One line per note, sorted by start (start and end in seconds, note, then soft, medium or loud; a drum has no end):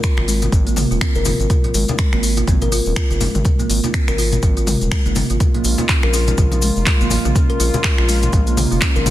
0.03 finger snap loud
0.03 kick loud
0.03 closed hi-hat medium
0.03 cabasa medium
0.17 0.49 G#1 medium
0.17 0.28 F4 medium
0.17 finger snap medium
0.17 muted conga medium
0.28 0.42 G#3 medium
0.28 open hi-hat medium
0.28 cabasa loud
0.42 closed hi-hat soft
0.42 muted conga soft
0.42 high conga loud
0.42 cabasa soft
0.52 0.85 G#1 loud
0.52 kick loud
0.52 closed hi-hat medium
0.52 low conga medium
0.52 cabasa medium
0.67 0.76 A#3 medium
0.67 closed hi-hat soft
0.67 cabasa soft
0.76 open hi-hat medium
0.76 mid tom loud
0.76 muted conga soft
0.76 high conga medium
0.76 cabasa medium
0.91 0.99 D#1 medium
0.91 1.01 F4 medium
0.91 cabasa soft
1.01 1.14 C4 medium
1.01 finger snap loud
1.01 kick loud
1.01 closed hi-hat medium
1.01 muted conga soft
1.01 cabasa soft
1.15 1.33 F#1 medium
1.15 1.21 A#4 loud
1.15 closed hi-hat soft
1.15 high conga medium
1.15 cabasa soft
1.25 1.33 F4 loud
1.25 open hi-hat medium
1.25 mid tom medium
1.25 muted conga medium
1.25 high conga loud
1.25 low conga medium
1.25 cabasa medium
1.40 1.48 G#1 medium
1.40 closed hi-hat soft
1.40 cabasa soft
1.50 1.63 F4 medium
1.50 kick loud
1.50 closed hi-hat medium
1.50 mid tom medium
1.50 muted conga medium
1.50 cabasa soft
1.64 1.74 F4 medium
1.64 closed hi-hat soft
1.64 low conga medium
1.74 1.85 G#1 loud
1.74 1.88 G#3 medium
1.74 open hi-hat medium
1.74 cabasa medium
1.88 closed hi-hat soft
1.88 muted conga soft
1.88 high conga loud
1.88 cabasa soft
1.98 finger snap loud
1.98 kick loud
1.98 closed hi-hat medium
1.98 cabasa medium
2.13 2.44 G#1 medium
2.13 2.22 A#3 medium
2.13 finger snap medium
2.13 muted conga medium
2.23 open hi-hat medium
2.23 cabasa medium
2.37 2.47 F4 medium
2.37 closed hi-hat soft
2.37 muted conga soft
2.37 high conga medium
2.37 cabasa soft
2.48 2.81 G#1 loud
2.48 2.60 C4 medium
2.48 kick loud
2.48 closed hi-hat medium
2.48 mid tom medium
2.48 low conga loud
2.48 cabasa medium
2.62 2.67 A#4 loud
2.62 closed hi-hat soft
2.62 high conga medium
2.62 cabasa soft
2.72 2.80 F4 loud
2.72 open hi-hat medium
2.72 muted conga soft
2.72 cabasa medium
2.86 2.94 D#1 medium
2.86 cabasa soft
2.96 3.09 F4 medium
2.96 finger snap loud
2.96 kick loud
2.96 closed hi-hat medium
2.96 muted conga soft
2.96 cabasa medium
3.10 3.28 F#1 medium
3.10 3.20 F4 medium
3.10 closed hi-hat soft
3.10 high conga medium
3.10 cabasa soft
3.21 3.34 G#3 medium
3.21 open hi-hat medium
3.21 muted conga medium
3.21 high conga loud
3.21 low conga medium
3.21 cabasa medium
3.35 3.43 G#1 medium
3.35 closed hi-hat soft
3.35 mid tom medium
3.35 cabasa soft
3.45 kick loud
3.45 closed hi-hat medium
3.45 mid tom medium
3.45 muted conga medium
3.45 cabasa medium
3.59 3.69 A#3 medium
3.59 closed hi-hat soft
3.59 low conga medium
3.59 cabasa soft
3.70 3.80 G#1 loud
3.70 open hi-hat loud
3.70 cabasa medium
3.83 3.94 F4 medium
3.83 closed hi-hat soft
3.83 muted conga soft
3.83 high conga loud
3.83 cabasa soft
3.94 4.07 C4 medium
3.94 finger snap loud
3.94 kick loud
3.94 closed hi-hat medium
3.94 cabasa soft
4.08 4.39 G#1 medium
4.08 4.14 A#4 loud
4.08 finger snap medium
4.08 muted conga medium
4.08 cabasa soft
4.18 4.26 F4 loud
4.18 open hi-hat medium
4.18 high conga medium
4.18 cabasa medium
4.32 closed hi-hat soft
4.32 muted conga soft
4.32 high conga medium
4.32 cabasa soft
4.42 4.76 G#1 loud
4.42 4.56 F4 medium
4.42 kick loud
4.42 closed hi-hat medium
4.42 low conga medium
4.42 cabasa medium
4.57 4.67 F4 medium
4.57 closed hi-hat soft
4.57 cabasa soft
4.66 4.81 G#3 medium
4.66 open hi-hat loud
4.66 mid tom loud
4.66 muted conga medium
4.66 high conga medium
4.66 cabasa loud
4.81 4.89 D#1 medium
4.81 closed hi-hat soft
4.81 cabasa soft
4.92 finger snap loud
4.92 kick loud
4.92 open hi-hat medium
4.92 muted conga soft
4.92 cabasa soft
5.06 5.23 F#1 medium
5.06 5.15 A#3 medium
5.06 closed hi-hat soft
5.06 high conga medium
5.06 cabasa soft
5.15 open hi-hat medium
5.15 mid tom medium
5.15 muted conga medium
5.15 high conga loud
5.15 low conga medium
5.15 cabasa medium
5.30 5.38 G#1 medium
5.30 5.40 F4 medium
5.30 closed hi-hat soft
5.30 cabasa soft
5.40 9.10 C#3 medium
5.40 9.10 G#3 medium
5.40 9.10 A#3 medium
5.40 9.10 F4 medium
5.40 kick loud
5.40 closed hi-hat medium
5.40 mid tom medium
5.40 muted conga medium
5.40 cabasa medium
5.54 5.64 A#3 medium
5.54 closed hi-hat soft
5.54 low conga medium
5.64 5.76 A#1 loud
5.64 open hi-hat medium
5.64 cabasa medium
5.78 5.89 F4 medium
5.78 closed hi-hat soft
5.78 muted conga soft
5.78 high conga loud
5.78 cabasa soft
5.89 finger snap loud
5.89 kick loud
5.89 clap loud
5.89 closed hi-hat medium
5.89 cabasa medium
6.03 6.34 A#1 medium
6.03 6.09 A#4 loud
6.03 finger snap medium
6.03 muted conga soft
6.14 6.21 F4 loud
6.14 open hi-hat loud
6.14 cabasa loud
6.27 closed hi-hat soft
6.27 muted conga soft
6.27 high conga loud
6.27 cabasa soft
6.38 6.71 A#1 loud
6.38 6.51 F4 medium
6.38 kick loud
6.38 closed hi-hat medium
6.38 mid tom medium
6.38 low conga loud
6.38 cabasa medium
6.52 6.62 F4 medium
6.52 closed hi-hat soft
6.52 high conga loud
6.52 cabasa soft
6.62 6.76 G#3 medium
6.62 open hi-hat loud
6.62 muted conga medium
6.62 cabasa loud
6.76 6.84 F1 medium
6.76 cabasa soft
6.86 finger snap loud
6.86 kick loud
6.86 clap loud
6.86 closed hi-hat medium
6.86 muted conga soft
6.86 cabasa medium
7.01 7.18 G#1 medium
7.01 7.10 A#3 medium
7.01 closed hi-hat soft
7.01 high conga medium
7.01 cabasa soft
7.10 open hi-hat loud
7.10 muted conga medium
7.10 high conga loud
7.10 low conga medium
7.10 cabasa loud
7.25 7.33 A#1 medium
7.25 7.35 F4 medium
7.25 closed hi-hat soft
7.25 mid tom medium
7.25 cabasa soft
7.35 7.48 C#4 medium
7.35 kick loud
7.35 closed hi-hat medium
7.35 mid tom medium
7.35 muted conga medium
7.35 cabasa medium
7.50 7.55 A#4 loud
7.50 closed hi-hat soft
7.60 7.71 A#1 loud
7.60 7.68 F4 loud
7.60 open hi-hat loud
7.60 cabasa loud
7.74 closed hi-hat soft
7.74 muted conga soft
7.74 high conga loud
7.74 cabasa soft
7.84 7.97 F4 medium
7.84 finger snap loud
7.84 kick loud
7.84 clap loud
7.84 closed hi-hat medium
7.84 cabasa medium
7.98 8.29 A#1 medium
7.98 8.08 F4 medium
7.98 finger snap medium
7.98 muted conga medium
8.09 8.22 G#3 medium
8.09 open hi-hat loud
8.09 cabasa loud
8.22 closed hi-hat soft
8.22 muted conga soft
8.22 high conga loud
8.22 cabasa soft
8.33 8.66 A#1 loud
8.33 kick loud
8.33 closed hi-hat medium
8.33 low conga medium
8.33 cabasa medium
8.47 8.56 A#3 medium
8.47 closed hi-hat soft
8.47 cabasa soft
8.57 open hi-hat medium
8.57 mid tom medium
8.57 muted conga medium
8.57 high conga medium
8.57 cabasa loud
8.72 8.79 F1 medium
8.72 8.81 F4 medium
8.72 cabasa soft
8.82 8.95 C#4 medium
8.82 finger snap loud
8.82 kick loud
8.82 clap loud
8.82 closed hi-hat medium
8.82 muted conga soft
8.82 cabasa medium
8.96 9.10 G#1 medium
8.96 9.02 A#4 loud
8.96 closed hi-hat soft
8.96 high conga medium
8.96 cabasa soft
9.06 9.10 F4 loud
9.06 open hi-hat loud
9.06 mid tom medium
9.06 muted conga medium
9.06 high conga loud
9.06 low conga loud
9.06 cabasa loud